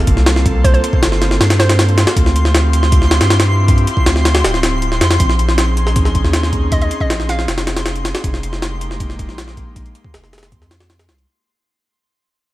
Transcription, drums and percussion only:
0.07 kick, closed hi-hat
0.17 snare
0.26 snare, closed hi-hat
0.36 snare
0.46 kick, closed hi-hat
0.64 kick, closed hi-hat
0.74 closed hi-hat
0.84 closed hi-hat
0.93 kick
1.03 snare, closed hi-hat
1.12 snare
1.22 snare, closed hi-hat
1.31 snare
1.41 snare, closed hi-hat
1.50 snare, closed hi-hat
1.60 snare, closed hi-hat
1.69 snare, closed hi-hat
1.79 snare, closed hi-hat
1.89 closed hi-hat
1.98 snare, closed hi-hat
2.07 snare, closed hi-hat
2.16 kick, closed hi-hat
2.26 snare
2.36 closed hi-hat
2.45 snare
2.54 snare, closed hi-hat
2.73 closed hi-hat
2.83 snare
2.92 kick, closed hi-hat
3.02 snare
3.11 snare, closed hi-hat
3.21 snare, closed hi-hat
3.30 snare, closed hi-hat
3.40 snare, closed hi-hat
3.68 kick, closed hi-hat
3.78 closed hi-hat
3.87 closed hi-hat
3.97 kick
4.06 snare, closed hi-hat
4.16 snare
4.25 snare, closed hi-hat
4.35 snare, closed hi-hat
4.44 snare, closed hi-hat
4.54 snare
4.63 snare, closed hi-hat
4.82 closed hi-hat
4.92 snare
5.01 snare, closed hi-hat
5.11 snare, closed hi-hat
5.20 kick, closed hi-hat
5.29 snare
5.39 closed hi-hat
5.49 snare
5.58 snare, closed hi-hat
5.77 closed hi-hat
5.87 snare
5.96 kick, closed hi-hat
6.05 snare
6.15 kick, closed hi-hat
6.24 snare
6.33 snare, closed hi-hat
6.43 snare
6.53 kick, closed hi-hat
6.72 kick, closed hi-hat
6.82 closed hi-hat
6.91 closed hi-hat
7.01 kick
7.10 snare, closed hi-hat
7.20 snare
7.29 snare, closed hi-hat
7.39 snare
7.48 snare, closed hi-hat
7.58 snare, closed hi-hat
7.67 snare, closed hi-hat
7.76 snare, closed hi-hat
7.86 snare, closed hi-hat
7.96 closed hi-hat
8.05 snare, closed hi-hat
8.15 snare, closed hi-hat
8.24 kick, closed hi-hat
8.34 snare
8.43 closed hi-hat
8.53 snare
8.62 snare, closed hi-hat
8.81 closed hi-hat
8.91 snare
9.00 kick, closed hi-hat
9.10 snare
9.19 kick, closed hi-hat
9.29 snare
9.38 snare, closed hi-hat
9.48 snare
9.57 kick, closed hi-hat
9.76 kick, closed hi-hat
9.86 closed hi-hat
9.95 closed hi-hat
10.04 kick
10.14 snare, closed hi-hat
10.24 snare
10.33 snare, closed hi-hat
10.38 snare, closed hi-hat
10.43 snare, closed hi-hat
10.52 kick, closed hi-hat
10.62 snare
10.71 snare, closed hi-hat
10.80 snare, closed hi-hat
10.90 snare, closed hi-hat
10.99 snare, closed hi-hat
11.09 snare, closed hi-hat
11.18 closed hi-hat

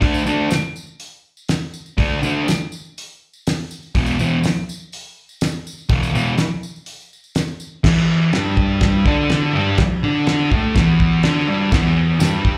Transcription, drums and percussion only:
0.02 kick, open hi-hat
0.14 tambourine
0.27 tambourine
0.51 snare, open hi-hat, tambourine
0.76 tambourine
0.87 tambourine
1.00 open hi-hat, tambourine
1.37 tambourine
1.49 snare, open hi-hat, tambourine
1.74 tambourine
1.86 tambourine
1.98 kick, open hi-hat
2.23 tambourine
2.48 snare, open hi-hat, tambourine
2.72 tambourine
2.85 tambourine
2.98 open hi-hat, tambourine
3.33 tambourine
3.47 snare, open hi-hat, tambourine
3.71 tambourine
3.83 tambourine
3.95 kick, open hi-hat
4.06 tambourine
4.19 tambourine
4.43 snare, open hi-hat, tambourine
4.69 tambourine
4.81 tambourine
4.92 open hi-hat, tambourine
5.29 tambourine
5.41 snare, open hi-hat, tambourine
5.67 tambourine
5.78 tambourine
5.89 kick, open hi-hat, tambourine
6.03 tambourine
6.15 tambourine
6.27 tambourine
6.38 snare, open hi-hat, tambourine
6.63 tambourine
6.76 tambourine
6.86 open hi-hat, tambourine
7.00 tambourine
7.13 tambourine
7.24 tambourine
7.35 snare, open hi-hat, tambourine
7.48 tambourine
7.60 tambourine
7.84 kick, snare, crash
8.33 snare, crash
8.57 kick
8.81 kick, snare, crash
9.06 kick
9.29 snare, crash
9.78 kick, snare, crash
10.27 snare, crash
10.52 kick
10.75 kick, snare, crash
11.00 kick
11.23 snare, crash
11.72 kick, snare, crash
12.20 snare, tambourine, crash
12.45 kick

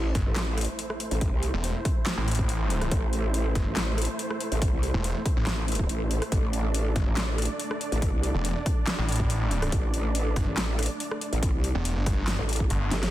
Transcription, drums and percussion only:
0.15 kick, cross-stick, closed hi-hat
0.36 snare, clap, closed hi-hat
0.58 cross-stick, closed hi-hat
0.61 closed hi-hat
0.65 closed hi-hat
0.79 closed hi-hat
0.90 cross-stick
1.00 closed hi-hat
1.11 closed hi-hat
1.21 kick, closed hi-hat
1.43 closed hi-hat
1.64 closed hi-hat
1.85 kick, cross-stick, closed hi-hat
2.06 snare, clap, closed hi-hat
2.28 closed hi-hat
2.31 closed hi-hat
2.35 closed hi-hat
2.39 kick
2.49 closed hi-hat
2.70 closed hi-hat
2.82 cross-stick, closed hi-hat
2.92 kick, closed hi-hat
3.13 closed hi-hat
3.34 closed hi-hat
3.55 kick, cross-stick, closed hi-hat
3.77 snare, clap, closed hi-hat
3.98 cross-stick, closed hi-hat
4.02 closed hi-hat
4.05 closed hi-hat
4.19 closed hi-hat
4.30 cross-stick
4.41 closed hi-hat
4.52 closed hi-hat
4.62 kick, closed hi-hat
4.83 closed hi-hat
5.04 closed hi-hat
5.26 kick, cross-stick, closed hi-hat
5.47 snare, clap, closed hi-hat
5.68 closed hi-hat
5.72 closed hi-hat
5.75 closed hi-hat
5.79 kick
5.89 closed hi-hat
6.11 closed hi-hat
6.22 cross-stick, closed hi-hat
6.32 kick, closed hi-hat
6.53 closed hi-hat
6.74 closed hi-hat
6.96 kick, cross-stick, closed hi-hat
7.17 snare, clap, closed hi-hat
7.38 cross-stick, closed hi-hat
7.42 closed hi-hat
7.45 closed hi-hat
7.60 closed hi-hat
7.71 cross-stick
7.81 closed hi-hat
7.92 closed hi-hat
8.02 kick, closed hi-hat
8.23 closed hi-hat
8.45 closed hi-hat
8.66 kick, cross-stick, closed hi-hat
8.87 snare, clap, closed hi-hat
9.09 closed hi-hat
9.12 closed hi-hat
9.16 closed hi-hat
9.20 kick
9.30 closed hi-hat
9.51 closed hi-hat
9.62 cross-stick, closed hi-hat
9.72 kick, closed hi-hat
9.94 closed hi-hat
10.15 closed hi-hat
10.36 kick, cross-stick, closed hi-hat
10.58 snare, clap, closed hi-hat
10.79 cross-stick, closed hi-hat
10.83 closed hi-hat
10.86 closed hi-hat
11.00 closed hi-hat
11.11 cross-stick
11.21 closed hi-hat
11.33 closed hi-hat
11.43 kick, closed hi-hat
11.64 closed hi-hat
11.85 closed hi-hat
12.06 kick, cross-stick, closed hi-hat
12.28 snare, clap, closed hi-hat
12.49 closed hi-hat
12.53 closed hi-hat
12.56 closed hi-hat
12.60 kick
12.70 closed hi-hat
12.91 snare, closed hi-hat
13.03 snare, closed hi-hat

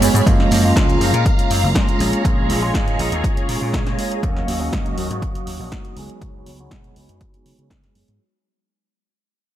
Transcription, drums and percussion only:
0.02 open hi-hat, tambourine, shaker
0.15 closed hi-hat, tambourine, shaker
0.27 kick, closed hi-hat, tambourine
0.40 snare
0.51 open hi-hat, tambourine
0.64 tambourine
0.76 kick, snare, closed hi-hat, tambourine
0.89 closed hi-hat, tambourine
1.01 open hi-hat, tambourine
1.14 closed hi-hat, tambourine
1.26 kick, closed hi-hat, tambourine
1.38 closed hi-hat, tambourine
1.50 open hi-hat, tambourine
1.63 tambourine
1.74 kick, snare, closed hi-hat, tambourine
1.88 closed hi-hat, tambourine
1.99 open hi-hat, tambourine
2.12 closed hi-hat, tambourine
2.24 kick, closed hi-hat, tambourine
2.49 open hi-hat, tambourine
2.62 tambourine
2.74 kick, snare, closed hi-hat, tambourine
2.87 closed hi-hat, tambourine
2.99 open hi-hat, tambourine
3.12 closed hi-hat, tambourine
3.24 kick, closed hi-hat, tambourine
3.37 closed hi-hat, tambourine
3.48 open hi-hat, tambourine
3.74 kick, snare, closed hi-hat
3.87 snare, closed hi-hat
3.98 open hi-hat, tambourine
4.12 closed hi-hat
4.23 kick, closed hi-hat
4.37 snare
4.48 open hi-hat
4.73 kick, snare, closed hi-hat
4.86 closed hi-hat
4.98 open hi-hat
5.11 closed hi-hat
5.22 kick, closed hi-hat
5.35 closed hi-hat
5.47 open hi-hat
5.72 kick, snare, closed hi-hat
5.85 closed hi-hat
5.97 open hi-hat
6.10 closed hi-hat
6.21 kick, closed hi-hat
6.46 open hi-hat
6.59 closed hi-hat
6.71 kick, snare, closed hi-hat
6.84 closed hi-hat
6.96 open hi-hat
7.09 closed hi-hat
7.21 kick, closed hi-hat
7.34 closed hi-hat
7.46 open hi-hat
7.59 closed hi-hat
7.70 kick, snare, closed hi-hat
7.84 snare, closed hi-hat
7.95 open hi-hat
8.08 closed hi-hat

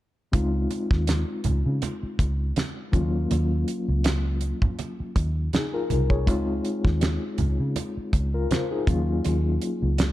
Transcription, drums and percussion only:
0.33 kick, closed hi-hat, muted conga
0.71 closed hi-hat, muted conga
0.91 kick, snare
1.07 snare, closed hi-hat, high conga
1.44 closed hi-hat, low conga
1.82 closed hi-hat, muted conga
2.19 kick, closed hi-hat, muted conga
2.56 snare, closed hi-hat, high conga
2.93 kick, closed hi-hat, high conga
3.31 closed hi-hat, muted conga
3.68 closed hi-hat
4.04 snare, closed hi-hat, high conga
4.41 closed hi-hat
4.62 kick, low conga
4.79 closed hi-hat, muted conga
5.16 kick, closed hi-hat, muted conga
5.53 snare, closed hi-hat, high conga
5.90 closed hi-hat, high conga
6.10 kick
6.27 kick, closed hi-hat, muted conga
6.65 closed hi-hat
6.85 kick, snare
7.01 snare, closed hi-hat, high conga
7.38 closed hi-hat, low conga
7.76 closed hi-hat, muted conga
8.13 kick, closed hi-hat, muted conga
8.51 snare, closed hi-hat, high conga
8.87 kick, closed hi-hat, high conga
9.24 closed hi-hat, muted conga
9.62 closed hi-hat
9.98 snare, closed hi-hat, high conga

